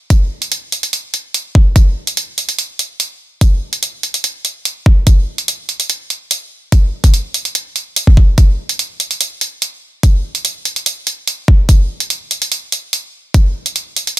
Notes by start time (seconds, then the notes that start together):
0.10 kick, closed hi-hat
0.42 closed hi-hat
0.52 closed hi-hat
0.72 closed hi-hat
0.83 closed hi-hat
0.93 closed hi-hat
1.14 closed hi-hat
1.34 closed hi-hat
1.55 kick
1.76 kick, closed hi-hat
2.07 closed hi-hat
2.17 closed hi-hat
2.38 closed hi-hat
2.49 closed hi-hat
2.59 closed hi-hat
2.79 closed hi-hat
3.00 closed hi-hat
3.41 kick, closed hi-hat
3.73 closed hi-hat
3.83 closed hi-hat
4.03 closed hi-hat
4.14 closed hi-hat
4.24 closed hi-hat
4.45 closed hi-hat
4.65 closed hi-hat
4.86 kick
5.07 kick, closed hi-hat
5.38 closed hi-hat
5.48 closed hi-hat
5.69 closed hi-hat
5.80 closed hi-hat
5.90 closed hi-hat
6.10 closed hi-hat
6.31 closed hi-hat
6.72 kick, closed hi-hat
7.04 kick, closed hi-hat
7.14 closed hi-hat
7.34 closed hi-hat
7.45 closed hi-hat
7.55 closed hi-hat
7.76 closed hi-hat
7.96 closed hi-hat
8.07 kick
8.17 kick
8.38 kick, closed hi-hat
8.69 closed hi-hat
8.79 closed hi-hat
9.00 closed hi-hat
9.11 closed hi-hat
9.21 closed hi-hat
9.41 closed hi-hat
9.62 closed hi-hat
10.03 kick, closed hi-hat
10.35 closed hi-hat
10.45 closed hi-hat
10.65 closed hi-hat
10.76 closed hi-hat
10.86 closed hi-hat
11.07 closed hi-hat
11.28 closed hi-hat
11.48 kick
11.69 kick, closed hi-hat
12.00 closed hi-hat
12.10 closed hi-hat
12.31 closed hi-hat
12.42 closed hi-hat
12.52 closed hi-hat
12.72 closed hi-hat
12.93 closed hi-hat
13.34 kick, closed hi-hat
13.66 closed hi-hat
13.76 closed hi-hat
13.96 closed hi-hat
14.07 closed hi-hat